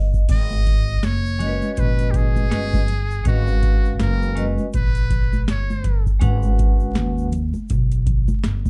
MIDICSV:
0, 0, Header, 1, 6, 480
1, 0, Start_track
1, 0, Tempo, 740741
1, 186, Time_signature, 4, 2, 24, 8
1, 5636, End_track
2, 0, Start_track
2, 0, Title_t, "Muted trumpet"
2, 0, Program_c, 0, 59
2, 203, Note_on_c, 0, 75, 107
2, 677, Note_on_c, 0, 73, 105
2, 687, Note_off_c, 0, 75, 0
2, 1121, Note_off_c, 0, 73, 0
2, 1121, Note_on_c, 0, 73, 73
2, 1163, Note_on_c, 0, 71, 91
2, 1173, Note_off_c, 0, 73, 0
2, 1366, Note_on_c, 0, 67, 58
2, 1376, Note_off_c, 0, 71, 0
2, 1400, Note_on_c, 0, 68, 100
2, 1409, Note_off_c, 0, 67, 0
2, 2113, Note_off_c, 0, 68, 0
2, 2121, Note_on_c, 0, 66, 97
2, 2567, Note_off_c, 0, 66, 0
2, 2605, Note_on_c, 0, 70, 91
2, 2890, Note_off_c, 0, 70, 0
2, 3081, Note_on_c, 0, 71, 91
2, 3528, Note_off_c, 0, 71, 0
2, 3566, Note_on_c, 0, 73, 80
2, 3910, Note_off_c, 0, 73, 0
2, 5636, End_track
3, 0, Start_track
3, 0, Title_t, "Vibraphone"
3, 0, Program_c, 1, 11
3, 0, Note_on_c, 1, 75, 56
3, 170, Note_off_c, 1, 75, 0
3, 899, Note_on_c, 1, 56, 65
3, 903, Note_on_c, 1, 61, 62
3, 907, Note_on_c, 1, 66, 58
3, 913, Note_on_c, 1, 70, 42
3, 915, Note_on_c, 1, 75, 73
3, 952, Note_on_c, 1, 71, 61
3, 959, Note_off_c, 1, 70, 0
3, 1582, Note_off_c, 1, 56, 0
3, 1585, Note_off_c, 1, 61, 0
3, 1587, Note_off_c, 1, 66, 0
3, 1591, Note_off_c, 1, 75, 0
3, 1609, Note_off_c, 1, 71, 0
3, 1619, Note_on_c, 1, 56, 71
3, 1626, Note_on_c, 1, 61, 61
3, 1628, Note_on_c, 1, 66, 53
3, 1631, Note_on_c, 1, 71, 59
3, 1637, Note_on_c, 1, 75, 79
3, 1803, Note_off_c, 1, 56, 0
3, 1806, Note_off_c, 1, 61, 0
3, 1808, Note_off_c, 1, 66, 0
3, 1809, Note_off_c, 1, 71, 0
3, 1812, Note_off_c, 1, 75, 0
3, 2099, Note_on_c, 1, 56, 63
3, 2103, Note_on_c, 1, 61, 58
3, 2107, Note_on_c, 1, 66, 65
3, 2113, Note_on_c, 1, 71, 61
3, 2116, Note_on_c, 1, 75, 60
3, 2157, Note_on_c, 1, 77, 72
3, 2161, Note_off_c, 1, 75, 0
3, 2783, Note_off_c, 1, 56, 0
3, 2785, Note_off_c, 1, 61, 0
3, 2787, Note_off_c, 1, 66, 0
3, 2790, Note_off_c, 1, 71, 0
3, 2812, Note_off_c, 1, 77, 0
3, 2819, Note_on_c, 1, 56, 68
3, 2821, Note_on_c, 1, 61, 64
3, 2826, Note_on_c, 1, 66, 64
3, 2832, Note_on_c, 1, 71, 65
3, 2833, Note_on_c, 1, 75, 80
3, 3003, Note_off_c, 1, 56, 0
3, 3004, Note_off_c, 1, 61, 0
3, 3006, Note_off_c, 1, 66, 0
3, 3009, Note_off_c, 1, 71, 0
3, 3010, Note_off_c, 1, 75, 0
3, 4015, Note_on_c, 1, 56, 77
3, 4021, Note_on_c, 1, 61, 63
3, 4023, Note_on_c, 1, 66, 68
3, 4027, Note_on_c, 1, 71, 67
3, 4033, Note_on_c, 1, 78, 81
3, 4701, Note_off_c, 1, 56, 0
3, 4704, Note_off_c, 1, 61, 0
3, 4705, Note_off_c, 1, 66, 0
3, 4707, Note_off_c, 1, 71, 0
3, 4710, Note_off_c, 1, 78, 0
3, 5636, End_track
4, 0, Start_track
4, 0, Title_t, "Upright bass"
4, 0, Program_c, 2, 32
4, 0, Note_on_c, 2, 31, 87
4, 164, Note_off_c, 2, 31, 0
4, 189, Note_on_c, 2, 32, 98
4, 643, Note_off_c, 2, 32, 0
4, 668, Note_on_c, 2, 30, 88
4, 1029, Note_off_c, 2, 30, 0
4, 1153, Note_on_c, 2, 34, 91
4, 1606, Note_off_c, 2, 34, 0
4, 1628, Note_on_c, 2, 31, 85
4, 2083, Note_off_c, 2, 31, 0
4, 2109, Note_on_c, 2, 32, 97
4, 2564, Note_off_c, 2, 32, 0
4, 2590, Note_on_c, 2, 30, 103
4, 2949, Note_off_c, 2, 30, 0
4, 3073, Note_on_c, 2, 34, 82
4, 3526, Note_off_c, 2, 34, 0
4, 3549, Note_on_c, 2, 31, 90
4, 4004, Note_off_c, 2, 31, 0
4, 4028, Note_on_c, 2, 32, 104
4, 4483, Note_off_c, 2, 32, 0
4, 4509, Note_on_c, 2, 39, 101
4, 4869, Note_off_c, 2, 39, 0
4, 4992, Note_on_c, 2, 35, 91
4, 5351, Note_off_c, 2, 35, 0
4, 5472, Note_on_c, 2, 31, 85
4, 5636, Note_off_c, 2, 31, 0
4, 5636, End_track
5, 0, Start_track
5, 0, Title_t, "Muted upright bass strokes"
5, 1050, Note_on_c, 9, 29, 44
5, 1115, Note_off_c, 9, 29, 0
5, 2971, Note_on_c, 9, 29, 47
5, 3036, Note_off_c, 9, 29, 0
5, 4895, Note_on_c, 9, 29, 46
5, 4960, Note_off_c, 9, 29, 0
5, 5375, Note_on_c, 9, 29, 42
5, 5440, Note_off_c, 9, 29, 0
5, 5636, End_track
6, 0, Start_track
6, 0, Title_t, "Drums"
6, 89, Note_on_c, 9, 36, 84
6, 90, Note_on_c, 9, 82, 47
6, 154, Note_off_c, 9, 36, 0
6, 155, Note_off_c, 9, 82, 0
6, 186, Note_on_c, 9, 42, 87
6, 186, Note_on_c, 9, 49, 97
6, 186, Note_on_c, 9, 82, 57
6, 187, Note_on_c, 9, 36, 116
6, 250, Note_off_c, 9, 42, 0
6, 251, Note_off_c, 9, 36, 0
6, 251, Note_off_c, 9, 49, 0
6, 251, Note_off_c, 9, 82, 0
6, 328, Note_on_c, 9, 63, 51
6, 328, Note_on_c, 9, 82, 46
6, 392, Note_off_c, 9, 63, 0
6, 392, Note_off_c, 9, 82, 0
6, 429, Note_on_c, 9, 82, 49
6, 432, Note_on_c, 9, 36, 83
6, 432, Note_on_c, 9, 42, 57
6, 494, Note_off_c, 9, 82, 0
6, 497, Note_off_c, 9, 36, 0
6, 497, Note_off_c, 9, 42, 0
6, 568, Note_on_c, 9, 82, 39
6, 633, Note_off_c, 9, 82, 0
6, 665, Note_on_c, 9, 82, 55
6, 667, Note_on_c, 9, 38, 86
6, 668, Note_on_c, 9, 42, 83
6, 730, Note_off_c, 9, 82, 0
6, 732, Note_off_c, 9, 38, 0
6, 733, Note_off_c, 9, 42, 0
6, 815, Note_on_c, 9, 82, 46
6, 880, Note_off_c, 9, 82, 0
6, 907, Note_on_c, 9, 64, 71
6, 907, Note_on_c, 9, 82, 41
6, 910, Note_on_c, 9, 42, 63
6, 972, Note_off_c, 9, 64, 0
6, 972, Note_off_c, 9, 82, 0
6, 975, Note_off_c, 9, 42, 0
6, 1049, Note_on_c, 9, 63, 62
6, 1049, Note_on_c, 9, 82, 48
6, 1114, Note_off_c, 9, 63, 0
6, 1114, Note_off_c, 9, 82, 0
6, 1146, Note_on_c, 9, 82, 66
6, 1148, Note_on_c, 9, 42, 76
6, 1150, Note_on_c, 9, 36, 87
6, 1211, Note_off_c, 9, 82, 0
6, 1213, Note_off_c, 9, 42, 0
6, 1215, Note_off_c, 9, 36, 0
6, 1288, Note_on_c, 9, 42, 44
6, 1292, Note_on_c, 9, 82, 44
6, 1353, Note_off_c, 9, 42, 0
6, 1357, Note_off_c, 9, 82, 0
6, 1385, Note_on_c, 9, 36, 95
6, 1387, Note_on_c, 9, 42, 68
6, 1393, Note_on_c, 9, 64, 46
6, 1393, Note_on_c, 9, 82, 39
6, 1450, Note_off_c, 9, 36, 0
6, 1452, Note_off_c, 9, 42, 0
6, 1458, Note_off_c, 9, 64, 0
6, 1458, Note_off_c, 9, 82, 0
6, 1530, Note_on_c, 9, 63, 68
6, 1530, Note_on_c, 9, 82, 49
6, 1595, Note_off_c, 9, 63, 0
6, 1595, Note_off_c, 9, 82, 0
6, 1629, Note_on_c, 9, 38, 103
6, 1630, Note_on_c, 9, 82, 62
6, 1632, Note_on_c, 9, 42, 87
6, 1693, Note_off_c, 9, 38, 0
6, 1695, Note_off_c, 9, 82, 0
6, 1697, Note_off_c, 9, 42, 0
6, 1770, Note_on_c, 9, 36, 95
6, 1779, Note_on_c, 9, 63, 64
6, 1779, Note_on_c, 9, 82, 47
6, 1835, Note_off_c, 9, 36, 0
6, 1844, Note_off_c, 9, 63, 0
6, 1844, Note_off_c, 9, 82, 0
6, 1867, Note_on_c, 9, 42, 78
6, 1869, Note_on_c, 9, 64, 55
6, 1869, Note_on_c, 9, 82, 43
6, 1932, Note_off_c, 9, 42, 0
6, 1934, Note_off_c, 9, 64, 0
6, 1934, Note_off_c, 9, 82, 0
6, 2013, Note_on_c, 9, 82, 43
6, 2078, Note_off_c, 9, 82, 0
6, 2106, Note_on_c, 9, 42, 91
6, 2107, Note_on_c, 9, 36, 120
6, 2110, Note_on_c, 9, 82, 49
6, 2171, Note_off_c, 9, 42, 0
6, 2172, Note_off_c, 9, 36, 0
6, 2175, Note_off_c, 9, 82, 0
6, 2249, Note_on_c, 9, 63, 53
6, 2249, Note_on_c, 9, 82, 58
6, 2313, Note_off_c, 9, 63, 0
6, 2313, Note_off_c, 9, 82, 0
6, 2350, Note_on_c, 9, 42, 63
6, 2352, Note_on_c, 9, 36, 89
6, 2352, Note_on_c, 9, 82, 43
6, 2415, Note_off_c, 9, 42, 0
6, 2416, Note_off_c, 9, 36, 0
6, 2417, Note_off_c, 9, 82, 0
6, 2494, Note_on_c, 9, 82, 40
6, 2559, Note_off_c, 9, 82, 0
6, 2589, Note_on_c, 9, 38, 103
6, 2590, Note_on_c, 9, 42, 82
6, 2592, Note_on_c, 9, 82, 57
6, 2654, Note_off_c, 9, 38, 0
6, 2655, Note_off_c, 9, 42, 0
6, 2656, Note_off_c, 9, 82, 0
6, 2737, Note_on_c, 9, 82, 43
6, 2802, Note_off_c, 9, 82, 0
6, 2829, Note_on_c, 9, 42, 65
6, 2830, Note_on_c, 9, 64, 67
6, 2830, Note_on_c, 9, 82, 43
6, 2894, Note_off_c, 9, 42, 0
6, 2895, Note_off_c, 9, 64, 0
6, 2895, Note_off_c, 9, 82, 0
6, 2968, Note_on_c, 9, 63, 59
6, 2968, Note_on_c, 9, 82, 40
6, 3033, Note_off_c, 9, 63, 0
6, 3033, Note_off_c, 9, 82, 0
6, 3065, Note_on_c, 9, 82, 66
6, 3069, Note_on_c, 9, 42, 78
6, 3071, Note_on_c, 9, 36, 86
6, 3129, Note_off_c, 9, 82, 0
6, 3134, Note_off_c, 9, 42, 0
6, 3136, Note_off_c, 9, 36, 0
6, 3207, Note_on_c, 9, 42, 43
6, 3214, Note_on_c, 9, 82, 46
6, 3272, Note_off_c, 9, 42, 0
6, 3279, Note_off_c, 9, 82, 0
6, 3305, Note_on_c, 9, 36, 84
6, 3308, Note_on_c, 9, 42, 69
6, 3315, Note_on_c, 9, 64, 54
6, 3315, Note_on_c, 9, 82, 40
6, 3370, Note_off_c, 9, 36, 0
6, 3373, Note_off_c, 9, 42, 0
6, 3379, Note_off_c, 9, 64, 0
6, 3379, Note_off_c, 9, 82, 0
6, 3454, Note_on_c, 9, 63, 65
6, 3454, Note_on_c, 9, 82, 47
6, 3519, Note_off_c, 9, 63, 0
6, 3519, Note_off_c, 9, 82, 0
6, 3550, Note_on_c, 9, 38, 116
6, 3550, Note_on_c, 9, 82, 71
6, 3554, Note_on_c, 9, 42, 82
6, 3615, Note_off_c, 9, 38, 0
6, 3615, Note_off_c, 9, 82, 0
6, 3619, Note_off_c, 9, 42, 0
6, 3695, Note_on_c, 9, 63, 73
6, 3695, Note_on_c, 9, 82, 47
6, 3760, Note_off_c, 9, 63, 0
6, 3760, Note_off_c, 9, 82, 0
6, 3785, Note_on_c, 9, 36, 82
6, 3785, Note_on_c, 9, 38, 35
6, 3786, Note_on_c, 9, 42, 72
6, 3788, Note_on_c, 9, 64, 56
6, 3788, Note_on_c, 9, 82, 42
6, 3850, Note_off_c, 9, 36, 0
6, 3850, Note_off_c, 9, 38, 0
6, 3851, Note_off_c, 9, 42, 0
6, 3852, Note_off_c, 9, 64, 0
6, 3852, Note_off_c, 9, 82, 0
6, 3929, Note_on_c, 9, 36, 77
6, 3931, Note_on_c, 9, 82, 44
6, 3994, Note_off_c, 9, 36, 0
6, 3995, Note_off_c, 9, 82, 0
6, 4025, Note_on_c, 9, 82, 54
6, 4026, Note_on_c, 9, 42, 92
6, 4027, Note_on_c, 9, 36, 122
6, 4089, Note_off_c, 9, 82, 0
6, 4090, Note_off_c, 9, 42, 0
6, 4091, Note_off_c, 9, 36, 0
6, 4164, Note_on_c, 9, 63, 55
6, 4164, Note_on_c, 9, 82, 54
6, 4229, Note_off_c, 9, 63, 0
6, 4229, Note_off_c, 9, 82, 0
6, 4267, Note_on_c, 9, 82, 51
6, 4270, Note_on_c, 9, 42, 62
6, 4271, Note_on_c, 9, 36, 95
6, 4331, Note_off_c, 9, 82, 0
6, 4335, Note_off_c, 9, 42, 0
6, 4336, Note_off_c, 9, 36, 0
6, 4406, Note_on_c, 9, 82, 37
6, 4470, Note_off_c, 9, 82, 0
6, 4503, Note_on_c, 9, 82, 50
6, 4505, Note_on_c, 9, 38, 102
6, 4507, Note_on_c, 9, 42, 75
6, 4568, Note_off_c, 9, 82, 0
6, 4570, Note_off_c, 9, 38, 0
6, 4571, Note_off_c, 9, 42, 0
6, 4651, Note_on_c, 9, 82, 45
6, 4716, Note_off_c, 9, 82, 0
6, 4743, Note_on_c, 9, 64, 67
6, 4743, Note_on_c, 9, 82, 46
6, 4747, Note_on_c, 9, 42, 63
6, 4808, Note_off_c, 9, 64, 0
6, 4808, Note_off_c, 9, 82, 0
6, 4812, Note_off_c, 9, 42, 0
6, 4883, Note_on_c, 9, 63, 61
6, 4883, Note_on_c, 9, 82, 43
6, 4948, Note_off_c, 9, 63, 0
6, 4948, Note_off_c, 9, 82, 0
6, 4980, Note_on_c, 9, 82, 60
6, 4988, Note_on_c, 9, 42, 85
6, 4990, Note_on_c, 9, 36, 84
6, 5045, Note_off_c, 9, 82, 0
6, 5053, Note_off_c, 9, 42, 0
6, 5055, Note_off_c, 9, 36, 0
6, 5129, Note_on_c, 9, 42, 41
6, 5130, Note_on_c, 9, 82, 43
6, 5194, Note_off_c, 9, 42, 0
6, 5195, Note_off_c, 9, 82, 0
6, 5225, Note_on_c, 9, 36, 93
6, 5227, Note_on_c, 9, 42, 72
6, 5227, Note_on_c, 9, 64, 52
6, 5227, Note_on_c, 9, 82, 35
6, 5289, Note_off_c, 9, 36, 0
6, 5292, Note_off_c, 9, 42, 0
6, 5292, Note_off_c, 9, 64, 0
6, 5292, Note_off_c, 9, 82, 0
6, 5366, Note_on_c, 9, 63, 73
6, 5366, Note_on_c, 9, 82, 50
6, 5431, Note_off_c, 9, 63, 0
6, 5431, Note_off_c, 9, 82, 0
6, 5465, Note_on_c, 9, 82, 62
6, 5466, Note_on_c, 9, 38, 105
6, 5470, Note_on_c, 9, 42, 80
6, 5530, Note_off_c, 9, 82, 0
6, 5531, Note_off_c, 9, 38, 0
6, 5535, Note_off_c, 9, 42, 0
6, 5609, Note_on_c, 9, 36, 88
6, 5609, Note_on_c, 9, 63, 69
6, 5609, Note_on_c, 9, 82, 50
6, 5636, Note_off_c, 9, 36, 0
6, 5636, Note_off_c, 9, 63, 0
6, 5636, Note_off_c, 9, 82, 0
6, 5636, End_track
0, 0, End_of_file